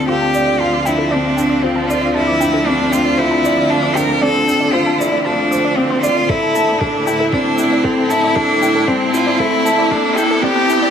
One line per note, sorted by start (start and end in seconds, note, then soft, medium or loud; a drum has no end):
0.00 10.90 D2 medium
0.00 6.26 D3 medium
0.00 6.26 F3 medium
0.00 1.12 C4 medium
0.00 6.26 C4 medium
0.00 0.87 D4 medium
0.00 0.08 F4 medium
0.00 0.35 D5 medium
0.08 0.33 F4 medium
0.08 0.62 G4 loud
0.08 0.12 C5 loud
0.21 0.31 A5 medium
0.34 0.59 D5 medium
0.34 shaker medium
0.47 0.54 D5 medium
0.60 0.87 F4 medium
0.60 0.85 F4 medium
0.60 0.70 A5 medium
0.73 0.79 D6 medium
0.85 1.11 D4 medium
0.85 1.13 E4 medium
0.85 0.92 G5 loud
0.85 shaker medium
0.98 1.03 A4 medium
1.11 1.27 C4 medium
1.11 1.65 D4 medium
1.11 1.18 D5 medium
1.37 1.53 D4 medium
1.37 1.47 G5 medium
1.37 shaker medium
1.50 1.60 D5 medium
1.63 1.91 C4 medium
1.63 1.88 F4 medium
1.63 1.67 C5 medium
1.76 1.86 A5 medium
1.89 2.14 F4 medium
1.89 2.14 D5 medium
1.89 shaker medium
2.01 2.08 D5 medium
2.14 2.68 E4 loud
2.14 2.41 F4 medium
2.14 2.24 A5 medium
2.27 2.34 D6 medium
2.40 2.66 D4 medium
2.40 2.47 G5 loud
2.40 shaker medium
2.53 2.58 A4 medium
2.66 2.82 C4 medium
2.66 2.93 D4 loud
2.66 2.73 D5 medium
2.92 3.08 D4 medium
2.92 3.20 F4 medium
2.92 3.02 G5 medium
2.92 shaker medium
3.05 3.15 D5 medium
3.17 3.72 E4 medium
3.17 3.43 F4 medium
3.17 3.22 C5 loud
3.31 3.41 A5 medium
3.45 3.70 D5 medium
3.45 shaker medium
3.57 3.64 D5 medium
3.70 3.98 D4 medium
3.70 3.96 F4 medium
3.70 3.80 A5 medium
3.82 3.89 D6 medium
3.95 4.21 D4 medium
3.95 4.24 A#4 loud
3.95 4.02 G5 medium
3.95 shaker medium
4.09 4.13 A4 medium
4.21 4.37 C4 medium
4.21 4.74 A4 loud
4.21 4.28 D5 loud
4.48 4.63 D4 medium
4.48 4.57 G5 medium
4.48 shaker medium
4.60 4.70 D5 medium
4.73 5.00 F4 loud
4.73 4.99 F4 medium
4.73 4.77 C5 loud
4.86 4.96 A5 medium
4.99 5.24 E4 medium
4.99 5.25 D5 medium
4.99 shaker medium
5.12 5.19 D5 medium
5.24 5.78 D4 medium
5.24 5.51 F4 medium
5.24 5.35 A5 medium
5.38 5.45 D6 medium
5.51 5.76 C5 medium
5.51 5.55 D6 medium
5.51 shaker medium
5.64 5.74 D5 medium
5.77 6.04 C4 medium
5.77 6.02 C4 medium
5.77 5.82 D5 medium
5.90 5.97 C5 loud
6.02 6.31 F4 medium
6.02 6.28 D5 medium
6.02 6.13 D5 medium
6.02 shaker medium
6.16 6.20 D5 medium
6.29 10.90 A2 medium
6.29 10.90 C4 medium
6.29 10.90 E4 medium
6.29 6.82 E4 loud
6.29 6.54 A4 medium
6.29 6.33 C5 medium
6.29 kick loud
6.29 riser medium
6.43 6.52 A5 medium
6.55 6.80 A5 loud
6.55 shaker medium
6.68 6.75 D5 medium
6.80 7.07 D4 medium
6.80 7.06 A4 medium
6.80 6.91 A5 medium
6.80 kick medium
6.94 7.01 D6 medium
7.06 7.31 E4 medium
7.06 7.32 E4 medium
7.06 7.13 G5 loud
7.06 shaker medium
7.20 7.24 A4 medium
7.32 7.48 C4 medium
7.32 7.85 D4 medium
7.32 7.39 D5 loud
7.32 kick loud
7.58 7.74 E4 medium
7.58 7.68 G5 medium
7.58 shaker medium
7.72 7.81 D5 medium
7.83 8.11 C4 medium
7.83 8.09 A4 medium
7.83 7.88 C5 medium
7.83 kick loud
7.98 8.07 A5 medium
8.09 8.37 E4 medium
8.09 8.35 A5 loud
8.09 shaker medium
8.23 8.30 D5 medium
8.35 8.89 D4 loud
8.35 8.61 A4 medium
8.35 8.46 A5 medium
8.35 kick loud
8.49 8.56 D6 medium
8.62 8.87 E4 medium
8.62 8.68 G5 loud
8.62 shaker medium
8.75 8.79 A4 medium
8.87 9.15 C4 medium
8.87 9.03 C4 loud
8.87 8.94 D5 loud
8.87 kick medium
9.13 9.29 E4 medium
9.13 9.41 F4 medium
9.13 9.23 G5 medium
9.13 shaker medium
9.27 9.36 D5 medium
9.39 9.93 E4 loud
9.39 9.65 A4 loud
9.39 9.44 C5 medium
9.39 kick loud
9.52 9.62 A5 medium
9.65 9.90 A5 loud
9.65 shaker medium
9.78 9.85 D5 medium
9.91 10.18 D4 medium
9.91 10.16 A4 medium
9.91 10.01 A5 medium
9.91 kick loud
10.04 10.11 D6 medium
10.17 10.42 E4 medium
10.17 10.44 A4 loud
10.17 10.24 G5 medium
10.17 shaker medium
10.31 10.34 A4 medium
10.42 10.58 C4 medium
10.42 10.90 G4 loud
10.42 10.50 D5 loud
10.42 kick loud
10.68 10.84 E4 medium
10.68 10.79 G5 medium
10.68 shaker medium
10.82 10.90 D5 medium